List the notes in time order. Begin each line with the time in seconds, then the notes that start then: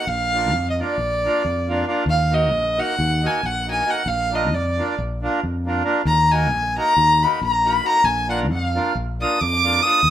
0.07 A#1 F5
0.33 A#3 D4 F4 A#4
0.53 F2
0.70 D#5
0.79 A#3 D4 F4 A#4 D5
0.98 A#1
1.24 A#3 D4 F4 A#4
1.45 F2
1.68 A#3 D4 F4 A#4
1.86 A#3 D4 F4 A#4
2.06 D#2 F5
2.31 A#3 D#4 F#4 A#4 D#5
2.52 A#1
2.76 A#3 D#4 F#4 A#4 F#5
2.99 D#2
3.23 A#3 D#4 F#4 A#4 G#5
3.43 A#1 F#5
3.67 A#3 D#4 F#4 A#4 G#5
3.85 A#3 D#4 F#4 A#4
3.90 F#5
4.06 A#1 F5
4.31 A#3 D4 F4 A#4 D#5
4.52 F2 D5
4.78 A#3 D4 F4 A#4
4.98 A#1
5.22 A#3 D4 F4 A#4
5.43 F2
5.66 A#3 D4 F4 A#4
5.84 A#3 D4 F4 A#4
6.05 D#2 A#5
6.30 A#3 D#4 F#4 A#4 G#5
6.50 A#1
6.77 A#3 D#4 F#4 A#4 A#5
6.97 D#2
7.23 A#3 D#4 F#4 A#4 B5
7.41 A#1 A#5
7.65 A#3 D#4 F#4 A#4 B5
7.83 A#3 D#4 F#4 A#4 A#5
8.04 A#1 G#5
8.28 A#3 D4 F4 A#4 F#5
8.50 F2 F5
8.75 A#3 D4 F4 A#4
8.95 A#1
9.20 A#3 D4 F4 A#4 D#6
9.41 F2 D6
9.64 A#3 D4 F4 A#4
9.82 A#3 D4 F4 A#4 D#6
10.03 D#2